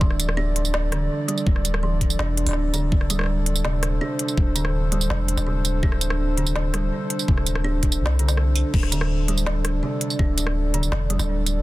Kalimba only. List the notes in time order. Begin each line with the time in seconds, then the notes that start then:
0.01 E3
0.37 D4
0.92 D3
1.28 G3
1.83 E3
2.19 D4
2.74 D3
3.10 G3
3.65 C3
4.01 D4
4.56 D3
4.92 G3
5.47 C3
5.83 D4
6.37 D3
6.74 G3
7.28 C3
7.64 D4
8.19 D3
8.92 D3
9.28 G3
9.83 C3
10.19 D4
10.74 D3
11.10 G3